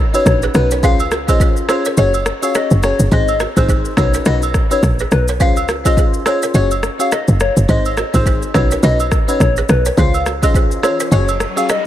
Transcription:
0.14 C#4 D#4 F#4 B4 C#5, high agogo, shaker
0.26 A#1 C#5, kick, cross-stick, shaker
0.42 G#4 B4, shaker
0.54 B1 C#4 D#4 F#4 B4, cross-stick, shaker
0.71 A#4 C#5, shaker
0.83 C#2 C#4 F4 G#4 C5 F5, kick, shaker
1.00 high agogo, shaker
1.11 F#4 A#4, cross-stick, shaker
1.28 C#4 F4 G#4 C5 D#5, kick, high agogo, shaker
1.40 G#4 C5, kick, shaker
1.57 shaker
1.69 C#4 F4 G#4 C5 C#5, cross-stick, high agogo, shaker
1.85 A#4 C#5, shaker
1.97 F#1 C#4 F#4 G#4 C#5 D#5, shaker
2.14 high agogo, shaker
2.26 cross-stick, shaker
2.42 C#4 F#4 G#4 C#5 F5, high agogo, shaker
2.55 G#4 C#5 D#5, cross-stick, shaker
2.71 F#1, shaker
2.83 C#4 F#4 G#4 C#5, cross-stick, shaker
2.99 F#1, shaker
3.11 G#1 C4 D#4 G#4 C5 D#5, kick, shaker
3.28 high agogo, shaker
3.40 F#4 A#4, cross-stick, shaker
3.57 G#1 C4 D#4 F4 G#4 C5, kick, high agogo, shaker
3.68 G#4 C5, kick, shaker
3.85 shaker
3.97 B1 C#4 D#4 F#4 B4 C#5, kick, cross-stick, high agogo, shaker
4.14 A#4 C#5, shaker
4.25 B1 C#4 D#4 F#4 B4 D#5, cross-stick, shaker
4.42 high agogo, shaker
4.54 kick, cross-stick, shaker
4.71 C#4 D#4 F#4 B4 C#5, high agogo, shaker
4.83 A#1, kick, cross-stick, shaker
4.99 G#4 B4, shaker
5.11 B1 B4, cross-stick, shaker
5.28 A#4 C#5, shaker
5.40 C#2 C#4 F4 G#4 C5 F5, kick, shaker
5.57 high agogo, shaker
5.68 F#4 A#4, cross-stick, shaker
5.85 C#4 F4 G#4 C5 D#5, kick, high agogo, shaker
5.97 G#4 C5, kick, shaker
6.14 shaker
6.26 C#4 F4 G#4 C5 C#5, cross-stick, high agogo, shaker
6.42 A#4 C#5, shaker
6.54 F#1 C#4 F#4 G#4 C#5 D#5, shaker
6.71 high agogo, shaker
6.83 cross-stick, shaker
6.99 C#4 F#4 G#4 C#5 F5, high agogo, shaker
7.12 G#4 C#5 D#5, cross-stick, shaker
7.28 F#1, shaker
7.40 C#5, cross-stick, shaker
7.57 F#1, shaker
7.68 G#1 C4 D#4 G#4 C5 D#5, kick, shaker
7.85 high agogo, shaker
7.97 F#4 A#4, cross-stick, shaker
8.14 G#1 C4 D#4 F4 G#4 C5, kick, high agogo, shaker
8.26 G#4 C5, kick, shaker
8.42 shaker
8.54 B1 C#4 D#4 F#4 B4 C#5, kick, cross-stick, high agogo, shaker
8.71 A#4 C#5, shaker
8.83 B1 C#4 D#4 F#4 B4 D#5, shaker
9.00 high agogo, shaker
9.12 kick, cross-stick, shaker
9.28 C#4 D#4 F#4 B4 C#5, high agogo, shaker
9.40 A#1 C#5, kick, cross-stick, shaker
9.56 G#4 B4, shaker
9.69 B1 B4, cross-stick, shaker
9.85 A#4 C#5, shaker
9.97 C#2 C#4 F4 G#4 C5 F5, kick, riser, shaker
10.14 high agogo, shaker
10.26 F#4 A#4, cross-stick, shaker
10.42 C#4 F4 G#4 C5 D#5, kick, high agogo, shaker
10.54 G#4 C5, kick, shaker
10.71 shaker
10.83 C#4 F4 G#4 C5 C#5, cross-stick, high agogo, shaker
11.00 A#4 C#5, shaker
11.11 F#1 C#4 F#4 G#4 C#5 D#5, shaker
11.28 high agogo, shaker
11.40 cross-stick, shaker
11.56 C#4 F#4 G#4 C#5 F5, high agogo, shaker
11.69 G#4 C#5 D#5, cross-stick, shaker

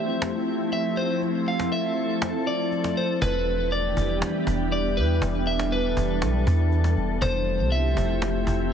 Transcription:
Already playing: F3 A3 C4 E4 G4 E5
0.22 cajon slap
0.72 E5, cajon slap
0.97 C5, cajon slap
1.22 A4, cajon slap
1.48 F5
1.60 cajon slap
1.72 E5, cajon slap
2.22 cajon slap
2.47 D5
2.72 cajon slap
2.84 cajon slap
2.97 C5, cajon slap
3.22 E1 E3 G3 B3 D4 G4 B4, cajon bass
3.72 D5, cajon slap
3.97 E1, cajon bass
4.22 cajon slap
4.47 E1, cajon bass
4.72 D5, cajon slap
4.97 E2 B4, cajon slap
5.22 E1 A4, cajon bass
5.47 E5
5.59 cajon slap
5.72 B4, cajon slap
5.97 E1, cajon bass
6.22 B1, cajon slap
6.47 E2, cajon bass
6.72 cajon slap
6.84 cajon slap
6.97 E1, cajon slap
7.21 F1 F3 A3 C4 E4 G4 C5, cajon bass
7.59 C2
7.72 E5, cajon slap
7.97 F1, cajon bass
8.22 cajon slap
8.47 F1, cajon bass

